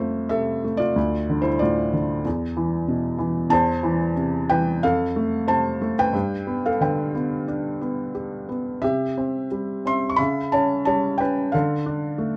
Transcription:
0.00 0.92 F2 medium
0.00 0.63 A3 soft
0.00 0.28 F4 soft
0.00 0.27 C5 medium
0.29 0.94 C3 soft
0.29 0.76 A4 medium
0.29 0.81 E5 medium
0.64 0.96 A3 soft
0.77 1.41 F4 medium
0.77 1.46 D5 medium
0.96 2.21 D2 medium
1.29 1.92 D3 medium
1.42 1.59 E4 medium
1.42 1.60 C5 medium
1.59 2.24 A2 soft
1.59 2.22 F4 medium
1.59 2.20 D5 medium
1.93 2.24 D3 soft
2.25 3.47 E2 medium
2.57 3.17 E3 medium
2.88 3.49 B2 soft
3.18 3.50 E3 soft
3.50 4.78 E2 medium
3.50 4.14 C5 medium
3.50 4.12 A5 medium
3.83 4.48 E3 medium
4.16 4.80 C3 medium
4.50 4.82 E3 medium
4.50 4.81 B4 medium
4.50 4.83 G5 medium
4.83 6.10 F2 medium
4.83 5.45 A4 medium
4.83 5.50 F5 medium
5.16 5.80 A3 medium
5.48 6.12 C3 soft
5.48 5.94 C5 medium
5.48 5.99 A5 medium
5.82 6.13 A3 medium
5.99 6.61 B4 medium
5.99 6.67 G5 medium
6.13 8.78 G2 medium
6.47 7.13 B3 medium
6.66 6.81 A4 medium
6.66 6.80 F5 medium
6.81 8.11 D3 soft
6.81 7.44 B4 medium
6.81 7.44 G5 medium
7.15 7.80 B3 soft
7.48 8.79 D4 soft
7.81 8.47 B3 soft
8.15 8.80 G4 soft
8.49 8.81 B3 soft
8.82 10.14 C3 medium
8.82 9.47 G4 medium
8.82 9.46 E5 medium
9.18 9.84 C4 medium
9.51 10.17 G3 soft
9.85 10.18 C4 soft
9.85 10.11 E5 medium
9.85 10.11 C6 medium
10.09 10.18 C#6 medium
10.16 11.50 C#3 medium
10.16 10.50 E5 medium
10.16 10.53 B5 medium
10.52 11.20 C#4 medium
10.52 10.85 C#5 medium
10.52 10.84 A5 medium
10.85 11.51 G3 soft
10.85 11.18 C#5 medium
10.85 11.21 A5 medium
11.18 11.53 C#4 soft
11.18 11.51 B4 medium
11.18 11.50 G5 medium
11.52 12.37 D3 medium
11.52 12.37 A4 medium
11.52 12.37 F5 medium
11.86 12.37 D4 medium
12.18 12.37 A3 soft

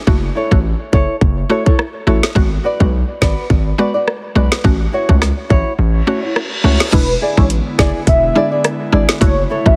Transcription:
0.07 0.30 F#1 loud
0.07 0.21 A3 loud
0.07 0.21 E4 medium
0.07 0.21 F#4 loud
0.07 kick loud
0.35 0.57 E4 medium
0.35 0.58 A4 medium
0.35 0.58 C#5 medium
0.51 0.74 A1 medium
0.51 0.62 A3 medium
0.51 0.62 E4 medium
0.51 0.63 F#4 medium
0.51 kick medium
0.92 1.06 F#1 medium
0.92 1.14 E4 medium
0.92 1.15 A4 medium
0.92 1.15 C#5 loud
0.92 kick loud
1.21 1.44 F#1 loud
1.21 kick medium
1.49 1.64 A3 medium
1.49 1.66 E4 medium
1.49 1.64 E4 medium
1.49 1.64 F#4 medium
1.49 1.65 A4 medium
1.49 1.64 C#5 medium
1.66 1.82 E4 medium
1.66 1.81 A4 medium
1.66 1.81 C#5 medium
1.66 kick loud
1.79 cross-stick medium
2.07 2.20 A1 loud
2.07 2.21 A3 medium
2.07 2.29 E4 medium
2.07 2.21 E4 medium
2.07 2.21 F#4 medium
2.07 2.29 A4 medium
2.07 2.30 C#5 loud
2.23 snare loud
2.35 2.59 G#1 loud
2.35 2.49 G#3 medium
2.35 2.49 B3 medium
2.35 2.50 F#4 loud
2.35 kick loud
2.64 2.86 F#4 medium
2.64 2.86 B4 medium
2.64 2.87 D5 loud
2.80 3.03 B1 medium
2.80 2.91 G#3 medium
2.80 2.91 B3 medium
2.80 2.91 F#4 medium
2.80 kick medium
3.21 3.34 G#1 loud
3.21 3.43 F#4 medium
3.21 3.43 B4 medium
3.21 3.44 D5 loud
3.21 kick loud
3.21 snare loud
3.50 3.73 G#1 loud
3.50 kick medium
3.78 3.92 G#3 medium
3.78 3.92 B3 medium
3.78 3.95 F#4 medium
3.78 3.93 F#4 medium
3.78 3.94 B4 medium
3.78 3.93 D5 medium
3.94 4.10 F#4 medium
3.94 4.10 B4 medium
3.94 4.09 D5 medium
4.08 cross-stick medium
4.35 4.49 B1 medium
4.35 4.49 G#3 medium
4.35 4.50 B3 medium
4.35 4.57 F#4 medium
4.35 4.50 F#4 medium
4.35 4.58 B4 medium
4.35 4.58 D5 medium
4.52 snare loud
4.64 4.87 A1 loud
4.64 4.78 A3 medium
4.64 4.78 C#4 medium
4.64 4.78 F#4 loud
4.64 kick loud
4.92 5.14 E4 medium
4.92 5.15 F#4 medium
4.92 5.15 C#5 medium
5.09 5.32 C#2 medium
5.09 5.20 A3 medium
5.09 5.20 C#4 medium
5.09 5.20 F#4 medium
5.09 kick medium
5.22 cross-stick medium
5.22 snare medium
5.49 5.63 A1 loud
5.49 5.71 E4 medium
5.49 5.72 F#4 medium
5.49 5.72 C#5 medium
5.49 kick medium
5.79 6.01 A1 loud
5.79 reverse cymbal medium
6.07 6.21 A3 medium
6.07 6.21 C#4 medium
6.07 6.23 E4 medium
6.07 6.22 F#4 medium
6.07 6.21 F#4 medium
6.07 6.21 C#5 medium
6.22 6.38 E4 soft
6.22 6.38 F#4 soft
6.22 6.38 C#5 medium
6.36 cross-stick medium
6.64 6.77 C#2 medium
6.64 6.78 A3 medium
6.64 6.78 C#4 medium
6.64 6.86 E4 medium
6.64 6.78 F#4 medium
6.64 6.86 F#4 medium
6.64 6.87 C#5 medium
6.80 snare loud
6.92 7.16 E1 loud
6.92 9.19 D3 medium
6.92 7.06 G#3 loud
6.92 9.19 G#3 medium
6.92 9.19 B3 medium
6.92 7.07 D4 medium
6.92 7.07 E4 loud
6.92 9.19 E4 medium
6.92 7.14 B4 loud
6.92 kick loud
6.92 closed hi-hat medium
6.92 crash loud
7.21 7.43 E4 medium
7.21 7.43 G#4 medium
7.21 7.44 D5 medium
7.37 7.60 A1 medium
7.37 7.48 G#3 medium
7.37 7.48 D4 medium
7.37 7.49 E4 medium
7.37 7.47 C#5 medium
7.37 kick medium
7.50 closed hi-hat medium
7.78 7.91 F#1 medium
7.78 8.00 E4 medium
7.78 8.01 G#4 loud
7.78 7.90 D5 medium
7.78 8.01 D5 loud
7.78 kick loud
7.78 snare loud
8.07 8.30 E1 loud
8.07 8.49 E5 loud
8.07 kick medium
8.07 closed hi-hat medium
8.35 8.49 G#3 medium
8.35 8.50 D4 medium
8.35 8.52 E4 loud
8.35 8.50 E4 medium
8.35 8.51 G#4 medium
8.35 8.50 D5 loud
8.51 8.67 E4 medium
8.51 8.67 G#4 medium
8.51 8.66 D5 medium
8.64 cross-stick loud
8.64 closed hi-hat medium
8.92 9.06 G#1 medium
8.92 9.07 G#3 medium
8.92 9.07 D4 medium
8.92 9.14 E4 medium
8.92 9.07 E4 medium
8.92 9.15 G#4 medium
8.92 9.15 D5 medium
9.09 snare loud
9.21 9.44 F#1 loud
9.21 9.76 C#3 medium
9.21 9.76 F#3 medium
9.21 9.35 A3 loud
9.21 9.76 A3 medium
9.21 9.35 E4 medium
9.21 9.76 E4 medium
9.21 9.35 F#4 loud
9.21 9.42 C#5 loud
9.21 kick loud
9.21 closed hi-hat medium
9.50 9.72 E4 medium
9.50 9.72 A4 medium
9.50 9.72 C#5 loud
9.66 9.76 A1 medium
9.66 9.76 A3 medium
9.66 9.76 E4 medium
9.66 9.76 F#4 medium
9.66 9.75 E5 medium
9.66 kick medium

